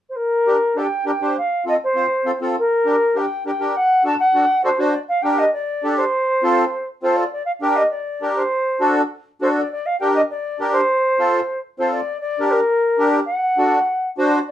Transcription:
0.09 0.17 C5 medium
0.15 0.79 A#4 medium
0.46 0.57 D4 medium
0.46 0.57 G4 medium
0.46 0.57 A#4 medium
0.76 0.87 D4 medium
0.76 0.87 G4 medium
0.76 0.87 A4 medium
0.76 1.07 G5 medium
1.06 1.11 D4 medium
1.06 1.11 G4 medium
1.06 1.11 A#4 medium
1.06 1.35 G5 medium
1.21 1.36 D4 medium
1.21 1.37 G4 medium
1.21 1.37 C5 medium
1.37 1.65 F5 medium
1.65 1.76 C4 medium
1.65 1.76 F4 medium
1.65 1.77 A4 medium
1.65 1.74 D#5 medium
1.83 2.38 C5 medium
1.95 2.06 C4 medium
1.95 2.06 F4 medium
1.95 2.06 C5 medium
2.25 2.31 C4 medium
2.25 2.31 F4 medium
2.25 2.31 A4 medium
2.41 2.56 C4 medium
2.41 2.56 F4 medium
2.41 2.56 A4 medium
2.58 3.18 A#4 medium
2.85 2.96 D4 medium
2.85 2.96 G4 medium
2.85 2.96 A#4 medium
3.15 3.26 D4 medium
3.15 3.26 G4 medium
3.15 3.26 A#4 medium
3.15 3.46 G5 medium
3.46 3.51 D4 medium
3.46 3.51 G4 medium
3.46 3.51 A#4 medium
3.46 3.78 G5 medium
3.60 3.75 D4 medium
3.60 3.75 G4 medium
3.60 3.75 A#4 medium
3.76 4.05 F#5 loud
4.04 4.15 D4 medium
4.04 4.15 F#4 medium
4.04 4.15 A4 medium
4.04 4.19 A5 medium
4.20 4.61 F#5 medium
4.34 4.45 D4 medium
4.34 4.45 F#4 medium
4.34 4.45 A4 medium
4.64 4.69 D4 medium
4.64 4.70 F#4 medium
4.64 4.70 A4 medium
4.64 4.81 C5 medium
4.79 4.94 D4 medium
4.79 4.94 F#4 medium
4.79 4.94 C5 medium
4.79 4.92 D5 medium
4.93 4.99 D5 medium
5.08 5.23 F5 medium
5.22 5.45 D4 medium
5.22 5.45 G4 medium
5.22 5.45 A#4 medium
5.22 5.40 G5 medium
5.38 5.52 D#5 medium
5.52 5.99 D5 medium
5.83 6.04 D4 medium
5.83 6.04 G4 medium
5.83 6.05 A4 medium
5.98 6.87 C5 medium
6.43 6.64 C4 medium
6.43 6.64 F4 medium
6.43 6.64 A4 medium
7.02 7.24 C4 medium
7.02 7.24 F4 medium
7.02 7.24 A4 medium
7.02 7.17 C5 medium
7.16 7.31 D5 medium
7.32 7.44 D5 medium
7.45 7.51 F5 medium
7.61 7.83 D4 medium
7.61 7.83 G4 medium
7.61 7.83 A#4 medium
7.61 7.77 G5 medium
7.76 7.89 D#5 medium
7.90 8.33 D5 medium
8.21 8.43 D4 medium
8.21 8.43 G4 medium
8.21 8.43 A#4 medium
8.36 8.95 C5 medium
8.80 9.02 D4 medium
8.80 9.02 F#4 medium
8.80 9.02 A4 medium
9.41 9.62 D4 medium
9.41 9.62 F#4 medium
9.41 9.62 A4 medium
9.41 9.47 C5 medium
9.57 9.71 D5 medium
9.71 9.87 D5 medium
9.86 9.98 F5 medium
9.99 10.22 D4 medium
9.99 10.22 G4 medium
9.99 10.22 A#4 medium
9.99 10.14 G5 medium
10.15 10.21 D#5 medium
10.30 10.72 D5 medium
10.59 10.81 D4 medium
10.59 10.81 G4 medium
10.59 10.81 A#4 medium
10.72 11.59 C5 medium
11.19 11.40 C4 medium
11.19 11.40 F4 medium
11.19 11.40 A4 medium
11.78 12.00 C4 medium
11.78 12.00 F4 medium
11.78 12.01 A4 medium
11.78 11.91 C5 medium
11.91 12.20 D5 medium
12.20 12.52 D5 medium
12.39 12.60 D4 medium
12.39 12.60 G4 medium
12.39 12.60 A#4 medium
12.51 13.10 A#4 medium
12.98 13.19 D4 medium
12.98 13.20 G4 medium
12.98 13.20 A#4 medium
13.11 13.17 G5 medium
13.25 14.09 F#5 medium
13.57 13.79 D4 medium
13.57 13.79 F#4 medium
13.57 13.79 A4 medium
14.18 14.39 D4 medium
14.18 14.39 F#4 medium
14.18 14.39 C5 medium
14.33 14.39 D5 medium
14.48 14.51 D5 medium

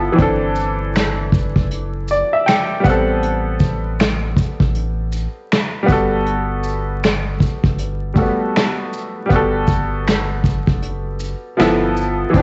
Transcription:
0.00 0.19 F3 medium
0.00 0.19 B3 medium
0.00 0.20 E4 medium
0.00 0.21 A4 medium
0.12 2.78 E3 medium
0.12 2.79 C4 medium
0.19 1.53 G1 loud
0.19 2.81 D4 medium
0.19 2.82 A4 medium
0.19 kick loud
0.19 closed hi-hat medium
0.56 closed hi-hat soft
0.56 shaker soft
0.95 finger snap medium
0.95 snare medium
0.95 closed hi-hat medium
1.33 kick medium
1.33 shaker soft
1.56 2.23 F#1 loud
1.56 kick medium
1.71 closed hi-hat medium
2.08 2.32 D5 medium
2.08 shaker medium
2.33 2.46 E5 medium
2.46 2.82 G5 medium
2.46 finger snap loud
2.46 snare loud
2.46 closed hi-hat medium
2.80 5.81 G3 medium
2.80 5.84 B3 medium
2.85 4.38 A1 medium
2.85 5.85 C4 medium
2.85 3.20 F#5 medium
2.85 kick loud
2.85 shaker soft
2.90 5.87 A4 medium
3.23 closed hi-hat medium
3.59 kick medium
3.59 shaker soft
3.99 finger snap medium
3.99 snare loud
3.99 closed hi-hat medium
4.36 kick medium
4.36 shaker soft
4.60 5.27 A1 medium
4.60 kick medium
4.75 closed hi-hat medium
5.12 closed hi-hat medium
5.12 shaker medium
5.52 finger snap loud
5.52 snare loud
5.52 closed hi-hat medium
5.83 8.09 G3 medium
5.83 8.11 B3 medium
5.89 7.42 G1 loud
5.89 8.13 F#4 medium
5.89 8.14 A4 medium
5.89 kick loud
5.89 shaker soft
6.26 closed hi-hat medium
6.63 shaker soft
7.03 finger snap medium
7.03 snare loud
7.03 closed hi-hat medium
7.40 kick medium
7.40 shaker medium
7.64 8.30 G1 medium
7.64 kick medium
7.78 closed hi-hat medium
8.14 9.24 G3 medium
8.14 8.24 A3 soft
8.14 9.31 F#4 soft
8.14 kick medium
8.14 closed hi-hat medium
8.14 shaker medium
8.19 9.28 B3 soft
8.19 9.31 A4 medium
8.56 finger snap medium
8.56 snare loud
8.56 closed hi-hat medium
8.93 shaker soft
9.26 11.52 G3 medium
9.26 11.54 B3 medium
9.30 10.64 G1 loud
9.30 11.55 F#4 medium
9.30 kick loud
9.30 closed hi-hat medium
9.36 11.57 A4 medium
9.67 kick medium
9.67 shaker soft
10.07 finger snap medium
10.07 snare loud
10.07 closed hi-hat medium
10.44 kick medium
10.44 shaker soft
10.67 11.34 F#1 medium
10.67 kick medium
10.82 closed hi-hat medium
11.20 closed hi-hat medium
11.20 shaker medium
11.57 12.25 G1 loud
11.57 12.33 F3 medium
11.57 12.34 B3 medium
11.57 12.35 E4 medium
11.57 finger snap medium
11.57 snare loud
11.57 closed hi-hat medium
11.62 12.36 A4 medium
11.97 shaker soft
12.30 12.42 E3 medium
12.30 12.42 C4 medium
12.34 12.42 G1 loud
12.34 12.42 D4 medium
12.34 kick medium
12.34 closed hi-hat medium

